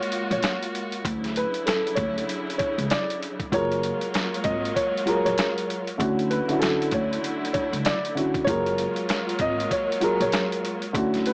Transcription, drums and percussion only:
0.02 closed hi-hat
0.12 closed hi-hat
0.31 closed hi-hat
0.43 snare, closed hi-hat
0.63 closed hi-hat
0.75 closed hi-hat
0.92 closed hi-hat
1.05 kick, closed hi-hat
1.24 snare, closed hi-hat
1.36 closed hi-hat
1.54 closed hi-hat
1.67 snare, closed hi-hat
1.87 closed hi-hat
1.96 kick, closed hi-hat
2.18 closed hi-hat
2.29 closed hi-hat
2.50 closed hi-hat
2.59 kick, closed hi-hat
2.79 closed hi-hat
2.90 snare, closed hi-hat
3.10 closed hi-hat
3.22 closed hi-hat
3.40 kick, closed hi-hat
3.52 kick, closed hi-hat
3.72 closed hi-hat
3.83 closed hi-hat
4.01 closed hi-hat
4.14 snare, closed hi-hat
4.34 closed hi-hat
4.44 kick, closed hi-hat
4.65 closed hi-hat
4.76 kick, closed hi-hat
4.97 closed hi-hat
5.07 closed hi-hat
5.26 closed hi-hat
5.38 snare, closed hi-hat
5.58 closed hi-hat
5.70 closed hi-hat
5.87 closed hi-hat
6.00 kick, closed hi-hat
6.19 closed hi-hat
6.31 closed hi-hat
6.49 closed hi-hat
6.62 snare, closed hi-hat
6.82 closed hi-hat
6.91 kick, closed hi-hat
7.13 closed hi-hat
7.24 closed hi-hat
7.45 closed hi-hat
7.54 kick, closed hi-hat
7.73 closed hi-hat
7.85 snare, closed hi-hat
8.05 closed hi-hat
8.17 closed hi-hat
8.34 kick, closed hi-hat
8.47 kick, closed hi-hat
8.66 closed hi-hat
8.78 closed hi-hat
8.96 closed hi-hat
9.09 snare, closed hi-hat
9.29 closed hi-hat
9.39 kick, closed hi-hat
9.60 closed hi-hat
9.71 kick, closed hi-hat
9.92 closed hi-hat
10.01 closed hi-hat
10.21 closed hi-hat
10.32 snare, closed hi-hat
10.52 closed hi-hat
10.65 closed hi-hat
10.82 closed hi-hat
10.94 kick, closed hi-hat
11.14 snare, closed hi-hat
11.26 closed hi-hat

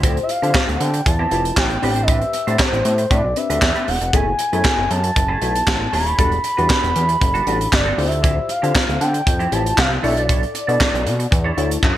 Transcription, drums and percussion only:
0.03 kick, closed hi-hat
0.17 closed hi-hat
0.29 closed hi-hat
0.43 closed hi-hat
0.54 kick, snare, clap
0.69 closed hi-hat
0.81 closed hi-hat
0.94 closed hi-hat
1.06 kick, closed hi-hat
1.31 closed hi-hat
1.45 closed hi-hat
1.57 kick, snare, clap
1.70 closed hi-hat
1.83 open hi-hat
1.96 closed hi-hat
2.08 kick, closed hi-hat
2.21 closed hi-hat
2.33 closed hi-hat
2.48 closed hi-hat
2.59 kick, snare, clap
2.73 closed hi-hat
2.85 closed hi-hat
2.98 closed hi-hat
3.11 kick, closed hi-hat
3.36 closed hi-hat
3.50 closed hi-hat
3.62 kick, snare, clap
3.75 closed hi-hat
3.88 open hi-hat
4.01 closed hi-hat
4.13 kick, closed hi-hat
4.39 closed hi-hat
4.53 closed hi-hat
4.65 kick, snare, clap
4.91 closed hi-hat
5.04 closed hi-hat
5.16 kick, closed hi-hat
5.42 closed hi-hat
5.55 closed hi-hat
5.67 kick, snare, clap
5.93 open hi-hat
6.06 closed hi-hat
6.19 kick, closed hi-hat
6.32 closed hi-hat
6.44 closed hi-hat
6.58 closed hi-hat
6.70 kick, snare, clap
6.84 closed hi-hat
6.96 closed hi-hat
7.09 closed hi-hat
7.21 kick, closed hi-hat
7.35 closed hi-hat
7.47 closed hi-hat
7.61 closed hi-hat
7.72 kick, snare, clap
7.99 open hi-hat
8.12 closed hi-hat
8.24 kick, closed hi-hat
8.49 closed hi-hat
8.64 closed hi-hat
8.75 kick, snare, clap
8.89 closed hi-hat
9.01 closed hi-hat
9.14 closed hi-hat
9.27 kick, closed hi-hat
9.40 closed hi-hat
9.52 closed hi-hat
9.66 closed hi-hat
9.78 kick, snare, clap
10.04 open hi-hat
10.17 closed hi-hat
10.29 kick, closed hi-hat
10.43 closed hi-hat
10.55 closed hi-hat
10.69 closed hi-hat
10.80 kick, snare, clap
10.95 closed hi-hat
11.07 closed hi-hat
11.20 closed hi-hat
11.32 kick, closed hi-hat
11.58 closed hi-hat
11.71 closed hi-hat
11.83 kick, clap

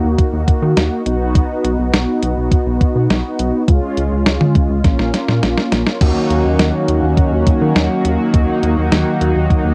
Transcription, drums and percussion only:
0.18 kick, closed hi-hat
0.48 kick, closed hi-hat
0.77 snare, closed hi-hat
1.06 closed hi-hat
1.35 kick, closed hi-hat
1.65 closed hi-hat
1.94 snare, closed hi-hat
2.23 closed hi-hat
2.52 kick, closed hi-hat
2.81 kick, closed hi-hat
3.10 snare, closed hi-hat
3.39 closed hi-hat
3.68 kick, closed hi-hat
3.97 closed hi-hat
4.26 snare, closed hi-hat
4.41 mid tom
4.55 kick, closed hi-hat
4.84 kick, snare, closed hi-hat
4.99 snare
5.14 snare, closed hi-hat
5.28 snare
5.43 snare, closed hi-hat
5.57 snare
5.72 snare, closed hi-hat
5.87 snare
6.01 kick, closed hi-hat, crash
6.30 closed hi-hat
6.59 snare, closed hi-hat
6.88 closed hi-hat
7.17 kick, closed hi-hat
7.47 kick, closed hi-hat
7.76 snare, closed hi-hat
8.05 closed hi-hat
8.34 kick, closed hi-hat
8.63 closed hi-hat
8.92 snare, closed hi-hat
9.21 closed hi-hat
9.50 kick, closed hi-hat

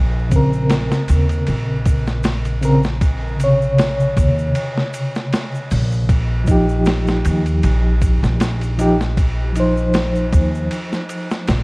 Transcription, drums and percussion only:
0.32 kick, ride, shaker
0.53 shaker
0.70 snare, ride, shaker
0.92 snare, shaker
1.08 ride, shaker
1.29 ride, shaker
1.47 ride, shaker
1.85 kick, ride, shaker
2.07 snare, shaker
2.23 snare, ride, shaker
2.45 ride, shaker
2.63 ride, shaker
2.83 snare, shaker
3.01 kick, ride, shaker
3.40 ride, shaker
3.62 shaker
3.78 snare, ride, shaker
4.00 shaker
4.17 kick, ride, shaker
4.38 shaker
4.55 ride, shaker
4.77 snare
4.94 ride, shaker
5.15 snare, shaker
5.32 snare, ride, shaker
5.54 shaker
5.71 open hi-hat, shaker
5.92 shaker
6.09 kick, ride, shaker
6.47 kick, ride, shaker
6.69 shaker
6.85 snare, ride, shaker
7.07 snare, shaker
7.25 ride, shaker
7.46 ride, shaker
7.63 ride, shaker
8.02 kick, ride, shaker
8.23 snare, shaker
8.40 snare, ride, shaker
8.61 ride, shaker
8.79 ride, shaker
9.01 snare, shaker
9.17 kick, ride, shaker
9.56 ride, shaker
9.77 shaker
9.94 snare, ride, shaker
10.15 shaker
10.32 kick, ride, shaker
10.55 shaker
10.71 ride, shaker
10.93 snare, shaker
11.09 ride, shaker
11.31 snare, shaker
11.48 snare, ride, shaker

